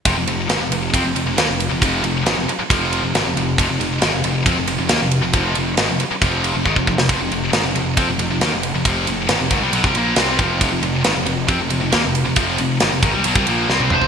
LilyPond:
<<
  \new Staff \with { instrumentName = "Lead electric guitar" } { \time 4/4 \key c \dorian \tempo 4 = 136 r1 | r1 | r1 | r1 |
r1 | r1 | r1 | r2. r8 c''8 | }
  \new Staff \with { instrumentName = "Distorted electric guitar" } { \clef bass \time 4/4 \key c \dorian <f, c>16 <f, c>16 <f, c>8 <aes, ees>16 <f, c>16 <f, c>8 <f c'>16 <f, c>16 <f, c>16 <f, c>16 <ees bes>16 <f, c>8 <f, c>16 | <f, c f>8 <f, c>8 <aes, ees>16 <f, c>16 r8 <f, c f>8. <f, c>16 <aes, ees>16 <f, c>16 <f, c>8 | <f, c>16 <f, c>16 <f, c>8 <aes, ees>16 <f, c>16 <f, c>8 <f c'>16 <f, c>16 <f, c>16 <f, c>16 <ees bes>16 <f, c>8 <f, c>16 | <f, c f>8 <f, c>8 <aes, ees>16 <f, c>16 r8 <f, c f>8. <f, c>16 <aes, ees>16 <f, c>16 <f, c>8 |
<f, c>16 <f, c>16 <f, c>8 <aes, ees>16 <f, c>16 <f, c>8 <f c'>16 <f, c>16 <f, c>16 <f, c>16 <ees bes>16 <f, c>8 <f, c>16 | <f, c f>8 <f, c>8 <aes, ees>16 <f, c>16 <aes, ees>16 <c g>16 <b, ges>16 <c g>16 <bes, f bes>8 <c g c'>8 <f, c f>8 | <f, c>16 <f, c>16 <f, c>8 <aes, ees>16 <f, c>16 <f, c>8 <f c'>16 <f, c>16 <f, c>16 <f, c>16 <ees bes>16 <f, c>8 <f, c>16 | <f, c f>8 <f, c>8 <aes, ees>16 <f, c>16 <aes, ees>16 <c g>16 <b, ges>16 <c g>16 <bes, f bes>8 <c g c'>8 <f, c f>8 | }
  \new Staff \with { instrumentName = "Picked electric bass" } { \clef bass \time 4/4 \key c \dorian f,,16 f,,16 f,,8 aes,,16 f,,16 f,,8 f,16 f,,16 f,,16 f,,16 ees,16 f,,8 f,,16 | f,,8 f,,8 aes,,16 f,,16 r8 f,,8. f,,16 aes,,16 f,,16 f,,8 | f,,16 f,,16 f,,8 aes,,16 f,,16 f,,8 f,16 f,,16 f,,16 f,,16 ees,16 f,,8 f,,16 | f,,8 f,,8 aes,,16 f,,16 r8 f,,8. f,,16 aes,,16 f,,16 f,,8 |
f,,16 f,,16 f,,8 aes,,16 f,,16 f,,8 f,16 f,,16 f,,16 f,,16 ees,16 f,,8 f,,16 | f,,8 f,,8 aes,,16 f,,16 aes,,16 c,16 b,,16 c,16 bes,,8 c,8 f,,8 | f,,16 f,,16 f,,8 aes,,16 f,,16 f,,8 f,16 f,,16 f,,16 f,,16 ees,16 f,,8 f,,16 | f,,8 f,,8 aes,,16 f,,16 aes,,16 c,16 b,,16 c,16 bes,,8 c,8 f,,8 | }
  \new DrumStaff \with { instrumentName = "Drums" } \drummode { \time 4/4 <bd cymr>8 cymr8 <cymr sn>8 cymr8 <bd cymr>8 cymr8 <cymr sn>8 cymr8 | <bd cymr>8 cymr8 <cymr sn>8 cymr8 <bd cymr>8 cymr8 <cymr sn>8 cymr8 | <bd cymr>8 cymr8 <cymr sn>8 cymr8 <bd cymr>8 cymr8 <cymr sn>8 cymr8 | <bd cymr>8 cymr8 <cymr sn>8 cymr8 <bd cymr>8 cymr8 bd16 bd16 bd16 sn16 |
<bd cymr>8 cymr8 <cymr sn>8 cymr8 <bd cymr>8 cymr8 <cymr sn>8 cymr8 | <bd cymr>8 cymr8 <cymr sn>8 <bd cymr>8 cymr16 bd16 cymr8 <cymr sn>8 <bd cymr>8 | <bd cymr>8 cymr8 <cymr sn>8 cymr8 <bd cymr>8 cymr8 <cymr sn>8 cymr8 | <bd cymr>8 cymr8 <cymr sn>8 <bd cymr>8 cymr16 bd16 cymr8 sn16 tommh16 toml16 tomfh16 | }
>>